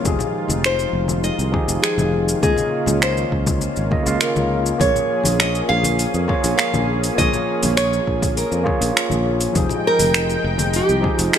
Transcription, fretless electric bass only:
0.05 F1
0.49 F1
0.93 F1
1.39 C2
1.68 F1
1.98 F1
2.43 C#2
2.87 C#2
3.32 C#2
3.77 G#1
4.06 C#2
4.36 C#2
4.81 A#1
5.25 A#1
5.70 A#1
6.14 F2
6.44 A#1
6.74 A#1
7.18 A#1
7.63 A#1
8.08 A#1
8.52 F2
8.81 A#1
9.11 A#1
9.56 F1
10.00 F1
10.44 F1
10.89 C2
11.19 F1

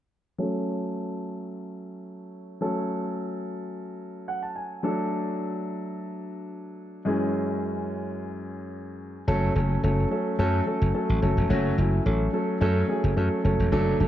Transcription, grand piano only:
0.38 F#3 A3 C#4 A4
2.61 F#3 A3 C#4 A4
4.28 F#5
4.43 A5
4.56 G#5
4.83 F#3 A3 D4 A4
7.05 F#2 E3 G#3 C#4 G#4
9.28 F#3 A3 C#4 A4
9.55 A3 C#4 A4
9.83 F#3 A3 C#4 A4
10.11 F#3 A3 C#4 A4
10.39 F#3 A3 C#4 A4
10.67 F#3 A3 C#4 A4
10.94 F#3 A3 C#4 A4
11.22 F#3 A3 C#4 A4
11.50 F#3 A3 C#4 F#4
11.78 F#3 A3 C#4 E4
12.05 F#3 A3 C#4 A4
12.33 F#3 A3 C#4 A4
12.61 F#3 A3 C#4 A4
12.88 F#3 A3 C#4 G#4
13.16 F#3 A3 C#4 A4
13.44 F#3 A3 C#4 A4
13.72 F#3 A3 D4 A4
14.00 F#3 A3 D4 A4

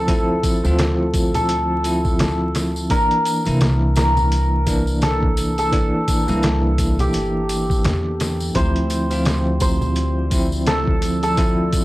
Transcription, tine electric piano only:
Already playing: F3 C4 E4
0.08 F3 C4 E4
0.64 F3 C4 F4
1.83 F3 C4 E4
2.90 E3 A#3 D4
3.45 E3 A#3 E4
4.66 E3 A#3 D4
5.72 E3 A#3 D4
6.27 E3 A#3 E4
8.55 F3 C4 E4
9.10 F3 C4 F4
10.31 F3 C4 E4
11.37 F3 C4 E4

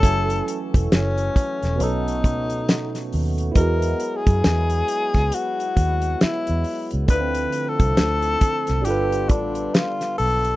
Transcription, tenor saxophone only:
Already playing: A4
0.94 C#4
1.82 D#4
3.57 A#4
4.17 G#4
5.34 F#4
6.22 E4
7.10 B4
7.69 A4
8.85 G4
9.29 D4
9.74 F4
10.18 A4

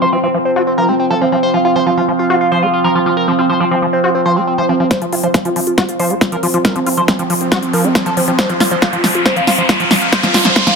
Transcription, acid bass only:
0.02 F3
0.13 F3
0.23 F3
0.34 F3
0.56 F#4
0.78 F3
0.89 A3
1.10 F3
1.21 F3
1.32 F3
1.54 F3
1.65 F4
1.76 F3
1.86 F3
1.97 F3
2.08 F3
2.30 F#4
2.52 F3
2.63 A3
2.84 F3
2.95 F3
3.06 F3
3.28 F3
3.39 F4
3.50 F3
3.60 F3
3.71 F3
3.82 F3
4.04 F#4
4.26 F3
4.36 A3
4.58 F3
4.69 F3
4.80 F3
5.02 F3
5.13 F4
5.23 F3
5.34 F3
5.45 F3
5.56 F3
5.78 F#4
5.99 F3
6.10 A3
6.32 F3
6.43 F3
6.54 F3
6.76 F3
6.86 F4
6.97 F3
7.08 F3
7.19 F3
7.30 F3
7.52 F#4
7.73 F3
7.84 A3
8.06 F3
8.17 F3
8.28 F3
8.49 F3
8.60 F4
8.71 F3
8.82 F3
8.93 F3
9.04 F3
9.36 F3
9.47 F4
9.58 F3
9.69 F3
9.80 F3
9.91 F3
10.23 F3
10.34 F4
10.45 F3
10.67 F3

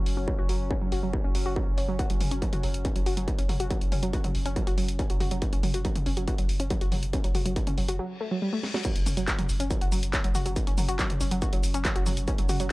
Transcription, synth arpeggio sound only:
0.17 C#4
0.28 F#3
0.39 F#4
0.49 F#3
0.71 C#4
0.81 F#3
0.92 F#4
1.03 F#3
1.24 C#4
1.35 F#3
1.46 F#4
1.56 F#3
1.78 C#4
1.89 F#3
1.99 F#4
2.10 F#3
2.31 C#4
2.42 F#3
2.53 F#4
2.64 F#3
2.85 C#4
2.96 F#3
3.06 F#4
3.17 F#3
3.39 C#4
3.49 F#3
3.60 F#4
3.71 F#3
3.92 C#4
4.03 F#3
4.13 F#4
4.24 F#3
4.46 C#4
4.56 F#3
4.67 F#4
4.78 F#3
4.99 C#4
5.10 F#3
5.20 F#4
5.31 F#3
5.53 C#4
5.63 F#3
5.74 F#4
5.85 F#3
6.06 C#4
6.17 F#3
6.28 F#4
6.38 F#3
6.60 C#4
6.71 F#3
6.81 F#4
6.92 F#3
7.13 C#4
7.24 F#3
7.35 F#4
7.46 F#3
7.67 C#4
7.78 F#3
7.89 F#4
7.99 F#3
8.21 A3
8.31 F#3
8.42 G3
8.53 A3
8.74 F#3
8.85 F#3
9.06 C#4
9.17 F#3
9.28 F#4
9.39 F#3
9.60 C#4
9.71 F#3
9.81 F#4
9.92 F#3
10.13 C#4
10.24 F#3
10.35 F#4
10.46 F#3
10.67 C#4
10.78 F#3
10.88 F#4
10.99 F#3
11.21 C#4
11.31 F#3
11.42 F#4
11.53 F#3
11.74 C#4
11.85 F#3
11.96 F#4
12.06 F#3
12.28 C#4
12.39 F#3
12.49 F#4
12.60 F#3

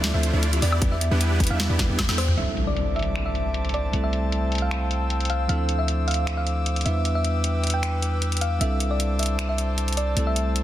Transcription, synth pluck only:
0.14 E5
0.62 D5
0.92 E5
1.50 F5
2.18 C5
2.37 E5
2.67 D5
2.96 E5
3.26 E5
3.74 D5
4.04 E5
4.62 F5
5.30 F5
5.49 F5
5.79 E5
6.08 F5
6.37 F5
6.86 E5
7.15 E5
7.74 G5
8.41 F5
8.61 E5
8.91 D5
9.19 E5
9.49 E5
9.97 D5
10.27 E5

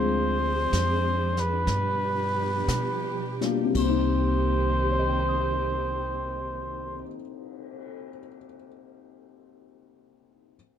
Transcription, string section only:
Already playing: F3 G#3 C4 D4 G#4
1.69 B2 F3 G3 G4
3.76 D#3 A#3 C4 G4

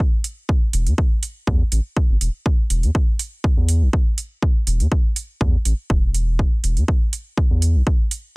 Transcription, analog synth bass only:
0.73 E1
0.87 E2
1.47 E2
1.72 A1
2.10 G1
2.21 E1
2.70 E1
2.83 E2
3.57 E2
3.82 B1
4.67 E1
4.80 E2
5.41 E2
5.66 A1
5.90 E1
6.64 E1
6.77 E2
7.51 E2
7.75 B1

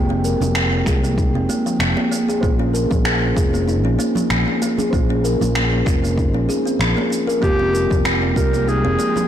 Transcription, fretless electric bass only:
Already playing: F1
0.40 F1
0.86 C2
1.34 F1
1.79 F1
2.43 A#1
2.91 A#1
3.37 F1
3.84 A#1
4.30 A#1
4.93 A#1
5.41 A#1
5.86 F1
6.34 A#1
6.79 A#1
7.43 F1
7.91 F1
8.36 C2
8.85 F1

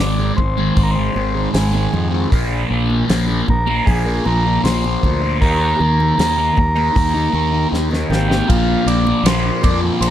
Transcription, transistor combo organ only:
Already playing: D5
0.36 C5
0.75 C5
0.83 A#4
0.90 C5
1.53 G#4
3.50 A#4
3.78 A#4
3.86 G#4
4.26 A#4
4.64 C5
5.41 A#4
8.10 G4
8.49 F4
8.87 D5
9.26 C5
9.63 D5
10.01 C5

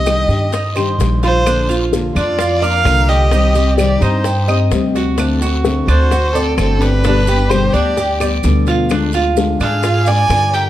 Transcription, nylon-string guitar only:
0.06 D#3 G3 D4 G4
0.29 D#3 G3 D4 G4
0.53 muted nylon-string guitar stroke
0.76 D#3 G3 D4 G4
0.98 D#3 G3 D4 G4
1.46 D3 A#3 D4 F4
1.68 A#3 D4 F4
1.92 D3 A#3 D4 F4
2.15 A#3 D4 F4
2.38 muted nylon-string guitar stroke
2.62 A#3 D4 F4
2.84 D3 A#3 D4 F4
3.32 C3 D#3 G3 C4 G4
3.55 G3 C4 G4
3.78 C3 D#3 G3 C4 G4
4.00 G3 C4 G4
4.25 muted nylon-string guitar stroke
4.47 G3 C4 G4
4.70 C3 G3 C4 G4
5.17 D3 A3 C4 F#4
5.41 A3 C4 F#4
5.65 D3 A3 C4 F#4
5.87 A3 C4 F#4
6.11 muted nylon-string guitar stroke
6.35 A3 C4 F#4
6.58 D3 A3 C4 F#4
7.05 B2 D3 G3 B3 G4
7.28 G3 B3 G4
7.50 B2 D3 G3 B3 G4
7.73 G3 B3 G4
7.97 muted nylon-string guitar stroke
8.20 G3 B3 G4
8.43 B2 D3 G3 B3 G4
8.90 D3 G#3 D4 F4
9.13 G#3 F4
9.36 D3 G#3 D4 F4
9.60 G#3 D4 F4
9.84 muted nylon-string guitar stroke
10.07 G#3 D4 F4
10.31 D3 D4 F4

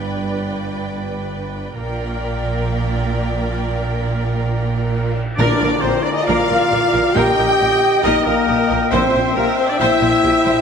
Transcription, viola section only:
Already playing: B4
1.78 A#4
5.39 A#4 D5
5.62 A#4
5.83 F4
6.27 A#4
6.49 A#4
6.71 F4
6.94 A#4
7.16 A#4 D#5
7.39 A#4
7.60 G4
8.03 A#4
8.26 A#4
8.47 G4
8.70 A#4
8.91 C5 E5
9.14 C5
9.37 G4
9.80 C5
10.02 C5
10.23 G4
10.45 C5

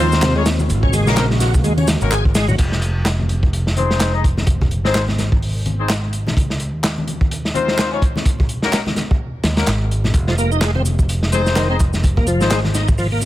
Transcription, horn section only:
0.00 C4 D#4 F4 C5
0.36 C#4 D#4 F4 C#5
1.07 A#3 C#4 F#4 A#4
2.01 A#3 C#4 F#4 A#4
3.77 C4 D#4 G#4 C5
4.14 D#4 G#4 D#5
4.85 C4 D#4 G#4 C5
5.79 C4 D#4 G#4 C5
7.55 C4 D#4 F4 C5
7.92 C#4 D#4 F4 C#5
8.63 A#3 C#4 F#4 A#4
9.57 A#3 C#4 F#4 A#4
11.32 C4 D#4 G#4 C5
11.69 D#4 G#4 D#5
12.41 C4 D#4 G#4 C5

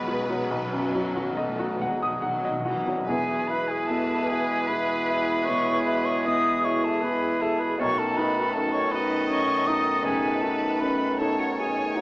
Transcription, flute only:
3.06 G#5
3.47 B5
3.68 G#5
3.87 A5
4.27 G#5
4.67 B5
5.45 C#6
5.84 B5
6.05 C#6
6.25 D#6
6.65 C#6
6.84 A5
7.04 B5
7.42 A5
7.61 B5
7.80 C#6
7.99 A5
8.17 B5
8.53 A5
8.72 C#6
8.91 B5
9.29 C#6
9.67 D#6
10.04 G#5
10.41 A5
10.80 B5
11.19 A5
11.40 F#5
11.58 G#5
11.95 F#5

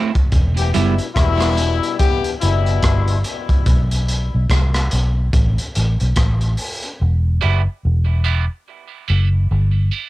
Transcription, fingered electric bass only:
0.33 E1
0.76 F#1
1.17 E1
2.43 F#1
2.84 G1
3.67 B1
4.35 B1
4.50 C2
4.93 B1
5.34 A1
5.77 A1
6.01 B1
6.17 A1
7.02 E1
7.44 F#1
7.85 E1
9.10 F#1
9.51 G1

